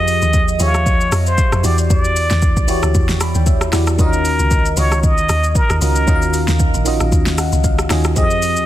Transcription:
0.00 0.21 F2 loud
0.00 0.45 F3 loud
0.00 0.45 F4 medium
0.00 0.45 G4 medium
0.00 0.46 G#4 medium
0.00 0.46 D#5 loud
0.00 0.57 D#5 loud
0.08 open hi-hat medium
0.08 shaker medium
0.22 0.59 D#2 medium
0.22 shaker medium
0.33 kick loud
0.33 shaker medium
0.48 shaker medium
0.59 1.10 D#2 loud
0.59 1.43 F3 medium
0.59 1.44 F4 medium
0.59 1.44 G4 medium
0.59 1.44 G#4 medium
0.59 1.23 C#5 loud
0.59 0.68 E5 medium
0.59 open hi-hat medium
0.59 shaker medium
0.68 1.48 F5 medium
0.74 cross-stick medium
0.74 shaker medium
0.86 kick loud
0.86 shaker medium
1.01 shaker soft
1.12 1.37 F2 medium
1.12 cross-stick loud
1.12 open hi-hat medium
1.12 shaker loud
1.26 1.62 C5 loud
1.26 shaker medium
1.38 kick loud
1.38 shaker medium
1.52 1.64 F2 loud
1.52 cross-stick loud
1.52 shaker medium
1.63 1.89 E2 loud
1.63 2.48 E3 medium
1.63 2.48 E4 medium
1.63 2.48 F#4 medium
1.63 2.49 G4 medium
1.63 1.77 D5 medium
1.63 2.49 D5 medium
1.63 open hi-hat medium
1.63 shaker loud
1.78 shaker medium
1.90 2.29 E2 loud
1.90 2.65 D5 loud
1.90 kick loud
1.90 shaker medium
2.05 shaker medium
2.16 open hi-hat medium
2.16 shaker medium
2.30 2.58 E2 medium
2.30 snare medium
2.30 shaker medium
2.42 kick loud
2.42 shaker medium
2.57 2.82 D2 medium
2.57 kick loud
2.57 shaker medium
2.67 3.52 E3 loud
2.67 3.52 E4 medium
2.67 3.53 F#4 medium
2.67 3.53 G4 medium
2.67 3.53 C#5 loud
2.67 open hi-hat medium
2.67 shaker medium
2.83 2.94 D2 medium
2.83 cross-stick medium
2.83 shaker medium
2.95 3.34 E2 loud
2.95 kick loud
2.95 shaker medium
3.09 snare medium
3.09 shaker soft
3.21 3.34 B5 medium
3.21 cross-stick loud
3.21 open hi-hat medium
3.21 shaker loud
3.35 3.71 D#2 loud
3.35 3.46 G5 medium
3.35 shaker medium
3.46 3.96 E5 medium
3.46 kick loud
3.46 shaker medium
3.61 cross-stick loud
3.61 shaker medium
3.72 3.98 E2 loud
3.72 3.94 E3 medium
3.72 3.94 E4 medium
3.72 3.95 F#4 medium
3.72 3.95 G4 medium
3.72 3.95 D5 loud
3.72 cross-stick loud
3.72 snare medium
3.72 open hi-hat medium
3.72 shaker medium
3.87 cross-stick loud
3.87 shaker medium
3.98 4.38 D#2 loud
3.98 4.62 D#3 loud
3.98 4.62 C#4 medium
3.98 4.63 F4 medium
3.98 4.63 F#4 medium
3.98 4.80 A#4 loud
3.98 4.64 D#5 loud
3.98 kick loud
3.98 shaker medium
4.13 shaker medium
4.25 open hi-hat medium
4.25 shaker medium
4.39 4.76 C#2 medium
4.39 shaker medium
4.51 kick loud
4.51 shaker medium
4.66 shaker medium
4.76 5.28 C#2 loud
4.76 5.61 D#3 medium
4.76 5.61 C#4 medium
4.76 5.61 F4 medium
4.76 5.62 F#4 medium
4.76 5.06 C#5 loud
4.76 5.62 D#5 medium
4.76 open hi-hat medium
4.76 shaker medium
4.92 cross-stick medium
4.92 shaker medium
5.03 5.58 D#5 loud
5.03 kick loud
5.03 shaker medium
5.18 shaker soft
5.29 5.55 D#2 medium
5.29 cross-stick loud
5.29 open hi-hat medium
5.29 shaker loud
5.43 shaker medium
5.55 5.82 A#4 loud
5.55 kick loud
5.55 shaker medium
5.70 5.81 D#2 medium
5.70 cross-stick loud
5.70 shaker medium
5.80 6.07 C#2 loud
5.80 6.02 D#3 medium
5.80 6.03 C#4 medium
5.80 6.03 F4 medium
5.80 6.03 F#4 medium
5.80 6.56 A#4 medium
5.80 6.04 D#5 medium
5.80 open hi-hat medium
5.80 shaker medium
5.96 shaker medium
6.06 6.47 D#2 loud
6.06 6.71 D#3 loud
6.06 6.71 C#4 medium
6.06 6.71 F4 medium
6.06 6.72 F#4 medium
6.06 6.15 D#5 medium
6.06 kick loud
6.06 shaker medium
6.15 6.75 F5 loud
6.22 shaker medium
6.34 open hi-hat medium
6.34 shaker medium
6.48 6.73 D#2 loud
6.48 snare medium
6.48 shaker medium
6.59 kick loud
6.59 shaker medium
6.74 6.99 A#1 medium
6.74 shaker medium
6.85 7.69 D#3 loud
6.85 7.70 C#4 medium
6.85 7.70 F4 medium
6.85 7.70 F#4 medium
6.85 7.71 D#5 loud
6.85 open hi-hat medium
6.85 shaker medium
7.00 7.12 A#1 medium
7.00 cross-stick medium
7.00 shaker medium
7.12 7.51 D#2 medium
7.12 kick loud
7.12 shaker medium
7.26 snare medium
7.26 shaker soft
7.38 7.63 F#5 medium
7.38 cross-stick loud
7.38 open hi-hat medium
7.38 shaker loud
7.52 7.89 C#2 medium
7.52 shaker medium
7.64 7.89 F5 medium
7.64 kick loud
7.64 shaker medium
7.79 cross-stick loud
7.79 shaker medium
7.89 8.18 D#2 loud
7.89 8.11 D#3 medium
7.89 8.11 C#4 medium
7.89 8.12 F4 medium
7.89 8.12 F#4 medium
7.89 8.13 D#5 loud
7.89 8.15 G#5 medium
7.89 cross-stick loud
7.89 snare medium
7.89 open hi-hat medium
7.89 shaker loud
8.04 cross-stick loud
8.04 shaker medium
8.15 8.58 F2 loud
8.15 8.66 F3 loud
8.15 8.66 C4 medium
8.15 8.66 G4 medium
8.15 8.66 G#4 medium
8.15 8.66 D#5 loud
8.15 kick loud
8.15 shaker medium
8.31 shaker medium
8.42 open hi-hat medium
8.42 shaker medium
8.56 8.66 D#2 medium
8.56 shaker medium

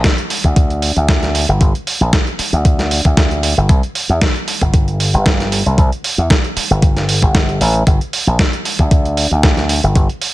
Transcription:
0.04 kick loud
0.04 snare loud
0.04 closed hi-hat medium
0.18 closed hi-hat soft
0.30 open hi-hat loud
0.44 0.92 D2 medium
0.44 kick medium
0.56 kick loud
0.56 closed hi-hat medium
0.70 closed hi-hat soft
0.82 open hi-hat loud
0.96 1.44 D2 medium
0.96 closed hi-hat soft
1.09 kick loud
1.09 snare loud
1.09 closed hi-hat medium
1.23 snare soft
1.23 closed hi-hat soft
1.35 open hi-hat loud
1.49 1.58 G1 medium
1.49 closed hi-hat soft
1.61 1.72 G1 loud
1.61 kick loud
1.61 closed hi-hat medium
1.75 closed hi-hat soft
1.87 open hi-hat loud
2.01 2.11 A#1 medium
2.01 closed hi-hat soft
2.13 kick loud
2.13 snare loud
2.13 closed hi-hat medium
2.27 closed hi-hat soft
2.39 muted slap bass stroke soft
2.39 open hi-hat loud
2.53 3.01 D2 medium
2.53 closed hi-hat soft
2.65 kick loud
2.65 closed hi-hat medium
2.79 snare soft
2.79 closed hi-hat soft
2.91 open hi-hat loud
3.05 3.53 D2 medium
3.05 kick medium
3.05 closed hi-hat soft
3.17 kick loud
3.17 snare loud
3.17 closed hi-hat medium
3.31 closed hi-hat soft
3.43 open hi-hat loud
3.57 3.67 G1 medium
3.57 closed hi-hat soft
3.69 3.81 C2 medium
3.69 kick loud
3.69 closed hi-hat medium
3.83 closed hi-hat soft
3.95 open hi-hat loud
4.09 4.19 E2 medium
4.09 closed hi-hat soft
4.21 kick loud
4.21 snare loud
4.21 closed hi-hat medium
4.36 closed hi-hat soft
4.48 open hi-hat loud
4.61 5.09 G1 medium
4.61 kick medium
4.61 closed hi-hat soft
4.74 kick loud
4.74 closed hi-hat medium
4.88 closed hi-hat soft
5.00 open hi-hat loud
5.14 5.62 G1 medium
5.14 closed hi-hat soft
5.26 kick loud
5.26 snare loud
5.26 closed hi-hat medium
5.40 snare soft
5.40 closed hi-hat soft
5.52 open hi-hat loud
5.66 5.76 C2 medium
5.66 closed hi-hat soft
5.78 5.89 C2 loud
5.78 kick loud
5.78 closed hi-hat medium
5.92 closed hi-hat soft
6.04 open hi-hat loud
6.18 6.28 E2 medium
6.18 closed hi-hat soft
6.30 kick loud
6.30 snare loud
6.30 closed hi-hat medium
6.44 closed hi-hat soft
6.56 muted slap bass stroke soft
6.56 open hi-hat loud
6.70 7.18 G1 medium
6.70 closed hi-hat soft
6.82 kick loud
6.82 closed hi-hat medium
6.97 snare soft
6.97 closed hi-hat soft
7.09 open hi-hat loud
7.22 7.60 G1 medium
7.22 kick medium
7.35 kick loud
7.35 snare loud
7.35 closed hi-hat medium
7.49 closed hi-hat soft
7.61 7.82 A1 loud
7.61 open hi-hat loud
7.75 closed hi-hat soft
7.87 7.98 G1 loud
7.87 kick loud
7.87 closed hi-hat medium
8.01 closed hi-hat soft
8.13 open hi-hat loud
8.27 8.37 A#1 medium
8.27 closed hi-hat soft
8.39 kick loud
8.39 snare loud
8.39 closed hi-hat medium
8.53 closed hi-hat soft
8.65 open hi-hat loud
8.79 9.27 D2 medium
8.79 kick medium
8.79 closed hi-hat soft
8.91 kick loud
8.91 closed hi-hat medium
9.05 closed hi-hat soft
9.17 open hi-hat loud
9.31 9.79 D2 medium
9.31 closed hi-hat soft
9.43 kick loud
9.43 snare loud
9.43 closed hi-hat medium
9.57 snare soft
9.57 closed hi-hat soft
9.69 open hi-hat loud
9.83 9.93 G1 medium
9.83 closed hi-hat soft
9.95 10.07 G1 loud
9.95 kick loud
9.95 closed hi-hat medium
10.09 closed hi-hat soft
10.21 open hi-hat loud

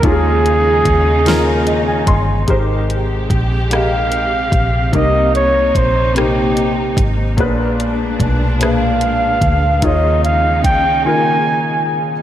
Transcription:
0.00 1.09 D#3 medium
0.00 2.44 G#3 medium
0.00 1.10 A#3 medium
0.00 1.10 C#4 medium
0.00 kick loud
0.00 closed hi-hat medium
0.04 0.82 D#2 loud
0.04 2.47 C#3 medium
0.04 2.46 D#4 medium
0.04 1.11 F4 medium
0.04 0.11 G4 medium
0.04 2.09 G#4 loud
0.12 1.14 G#4 medium
0.46 closed hi-hat soft
0.85 2.04 D#2 medium
0.85 kick medium
0.85 closed hi-hat medium
1.25 2.32 D#3 medium
1.25 2.32 A#3 medium
1.25 2.33 C#4 medium
1.25 2.33 F4 medium
1.25 2.34 A#4 medium
1.25 snare loud
1.25 closed hi-hat medium
1.67 1.86 D#5 medium
1.67 closed hi-hat medium
1.88 2.06 G#5 medium
2.07 2.45 G1 medium
2.07 2.46 C6 medium
2.07 kick loud
2.07 closed hi-hat medium
2.47 3.26 G#1 loud
2.47 7.35 C3 medium
2.47 3.54 G#3 medium
2.47 4.91 G#3 medium
2.47 3.55 D#4 medium
2.47 3.55 G4 medium
2.47 4.91 G4 medium
2.47 3.56 A#4 medium
2.47 3.56 C5 medium
2.47 kick loud
2.47 closed hi-hat medium
2.90 closed hi-hat soft
3.30 4.49 A#1 medium
3.30 kick medium
3.30 closed hi-hat medium
3.69 4.77 G#3 medium
3.69 4.77 D#4 soft
3.69 4.78 G4 medium
3.69 4.78 A#4 soft
3.69 4.79 D#5 medium
3.69 4.90 F5 loud
3.69 cross-stick loud
3.69 closed hi-hat medium
4.12 closed hi-hat soft
4.52 4.90 A#1 medium
4.52 kick medium
4.52 closed hi-hat medium
4.92 5.71 C2 loud
4.92 5.99 C3 medium
4.92 6.00 A#3 medium
4.92 7.36 A#3 medium
4.92 6.00 D#4 medium
4.92 7.36 D#4 medium
4.92 6.01 G4 medium
4.92 6.01 A#4 medium
4.92 5.32 D#5 loud
4.92 kick loud
4.92 closed hi-hat medium
5.35 5.78 C#5 medium
5.35 closed hi-hat soft
5.75 6.94 A#1 medium
5.75 6.18 C5 medium
5.75 kick medium
5.75 closed hi-hat medium
6.15 7.22 C3 medium
6.15 7.22 A#3 medium
6.15 7.23 D#4 medium
6.15 7.08 G4 medium
6.15 7.23 G4 soft
6.15 7.24 C5 medium
6.15 cross-stick loud
6.15 closed hi-hat medium
6.57 closed hi-hat soft
6.97 7.39 G#1 medium
6.97 kick loud
6.97 closed hi-hat medium
7.37 8.16 A#1 loud
7.37 8.44 A#2 medium
7.37 9.80 A#2 medium
7.37 12.22 G#3 medium
7.37 8.45 A#3 medium
7.37 7.45 B3 medium
7.37 9.80 D4 medium
7.37 8.46 G#4 medium
7.37 8.46 B4 medium
7.37 kick loud
7.37 closed hi-hat medium
7.45 8.48 D4 medium
7.80 closed hi-hat soft
8.20 9.39 B1 medium
8.20 kick medium
8.20 closed hi-hat medium
8.59 9.67 A#2 medium
8.59 9.67 A#3 soft
8.59 9.68 D4 medium
8.59 9.68 G#4 medium
8.59 9.68 B4 medium
8.59 9.85 F5 medium
8.59 cross-stick loud
8.59 closed hi-hat medium
9.01 closed hi-hat medium
9.41 9.79 D2 medium
9.41 kick loud
9.41 closed hi-hat medium
9.82 10.65 D#2 loud
9.82 12.22 C#3 medium
9.82 10.89 D#3 medium
9.82 10.89 A#3 medium
9.82 12.22 D#4 medium
9.82 10.90 F4 medium
9.82 10.90 G#4 medium
9.82 10.91 C#5 medium
9.82 10.23 D#5 medium
9.82 kick loud
9.82 closed hi-hat medium
10.24 10.62 F5 medium
10.24 closed hi-hat soft
10.64 11.06 C#2 loud
10.64 11.02 G5 loud
10.64 kick medium
10.64 closed hi-hat medium
11.04 12.12 D#3 medium
11.04 12.12 A#3 medium
11.04 12.12 F4 medium
11.04 12.13 G#4 medium
11.04 12.13 A#4 medium
11.04 11.93 G#5 medium

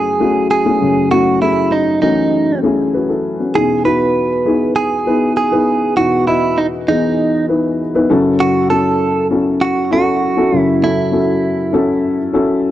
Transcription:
0.00 0.77 F#2 medium
0.00 0.77 C#3 medium
0.00 0.19 A3 medium
0.00 0.20 C#4 medium
0.00 0.20 E4 medium
0.00 0.20 F#4 medium
0.00 0.47 G#4 medium
0.19 0.52 A3 medium
0.19 0.52 C#4 medium
0.19 0.52 E4 medium
0.19 0.52 F#4 medium
0.51 1.11 G#4 medium
0.65 0.98 A3 medium
0.65 0.98 C#4 medium
0.65 0.98 E4 medium
0.65 0.98 F#4 medium
0.81 3.20 F#2 medium
0.81 3.20 C#3 medium
1.10 1.32 A3 medium
1.10 1.33 C#4 medium
1.10 1.33 E4 medium
1.10 1.41 F#4 medium
1.10 1.33 F#4 medium
1.41 1.84 A3 medium
1.41 1.84 C#4 medium
1.41 1.73 E4 medium
1.41 1.85 E4 medium
1.41 1.85 G#4 medium
1.72 2.01 D#4 medium
2.02 2.45 E3 medium
2.02 2.45 A3 medium
2.02 2.45 C#4 medium
2.02 2.59 D#4 medium
2.02 2.45 F#4 medium
2.63 2.95 A3 medium
2.63 2.93 C#4 medium
2.63 2.94 E4 medium
2.63 2.94 G#4 medium
2.94 3.08 F#4 medium
2.94 3.08 B4 medium
3.09 3.38 E4 soft
3.09 3.38 A4 medium
3.39 3.68 C#4 soft
3.39 3.68 F#4 medium
3.54 5.93 E2 medium
3.54 5.93 B2 medium
3.54 3.75 B3 medium
3.54 3.76 D#4 medium
3.54 3.76 E4 medium
3.54 3.76 G#4 medium
3.54 3.85 G#4 medium
3.84 4.27 B3 medium
3.84 4.27 D#4 medium
3.84 4.28 E4 medium
3.84 4.28 F#4 medium
3.84 4.75 B4 medium
4.45 4.88 B3 medium
4.45 4.88 D#4 medium
4.45 4.88 E4 medium
4.45 4.89 G#4 medium
4.76 5.32 G#4 medium
5.06 5.38 B3 medium
5.06 5.38 D#4 medium
5.06 5.38 E4 medium
5.06 5.39 B4 medium
5.37 5.96 G#4 medium
5.51 5.83 B3 medium
5.51 5.84 D#4 medium
5.51 5.84 E4 medium
5.51 5.84 B4 medium
5.96 8.05 E2 medium
5.96 8.05 B2 medium
5.96 6.18 B3 medium
5.96 6.18 D#4 medium
5.96 6.18 E4 medium
5.96 6.25 F#4 medium
5.96 6.19 F#4 medium
6.27 6.70 B3 medium
6.27 6.59 E4 medium
6.27 6.70 E4 medium
6.27 6.70 F#4 medium
6.27 6.70 D#5 medium
6.58 6.66 D#4 medium
6.88 7.31 E3 medium
6.88 7.31 B3 medium
6.88 7.31 D#4 medium
6.88 7.45 D#4 medium
6.88 7.31 G#4 medium
7.48 7.81 B3 medium
7.48 7.81 D#4 medium
7.48 7.81 E4 medium
7.48 7.81 B4 medium
7.94 8.09 B3 medium
7.94 8.10 D#4 medium
7.94 8.08 E4 medium
7.94 8.10 B4 medium
8.09 10.48 F#2 medium
8.09 10.48 C#3 medium
8.09 8.58 C#4 medium
8.09 8.58 E4 medium
8.09 8.58 F#4 medium
8.09 8.58 A4 medium
8.40 8.70 F#4 medium
8.70 9.13 C#4 medium
8.70 9.13 E4 medium
8.70 9.13 F#4 medium
8.70 9.27 A4 medium
8.70 9.13 A4 medium
9.31 9.74 C#4 medium
9.31 9.74 E4 medium
9.31 9.74 F#4 medium
9.31 9.74 A4 medium
9.61 9.91 F#4 medium
9.91 10.23 C#4 medium
9.91 10.24 E4 medium
9.91 10.24 F#4 medium
9.91 10.59 F#4 medium
9.91 10.24 A4 medium
10.37 10.69 C#4 medium
10.37 10.69 E4 medium
10.37 10.69 F#4 medium
10.37 10.70 A4 medium
10.52 12.71 F#2 medium
10.52 12.71 C#3 medium
10.59 10.84 E4 medium
10.82 11.04 C#4 medium
10.82 11.04 E4 medium
10.82 12.61 E4 medium
10.82 11.04 F#4 medium
10.82 11.04 A4 medium
11.12 11.55 C#4 medium
11.12 11.55 E4 medium
11.12 11.56 F#4 medium
11.12 11.56 A4 medium
11.73 12.16 C#4 medium
11.73 12.16 E4 medium
11.73 12.16 F#4 medium
11.73 12.16 A4 medium
12.33 12.66 C#4 medium
12.33 12.66 E4 medium
12.33 12.66 F#4 medium
12.33 12.66 A4 medium

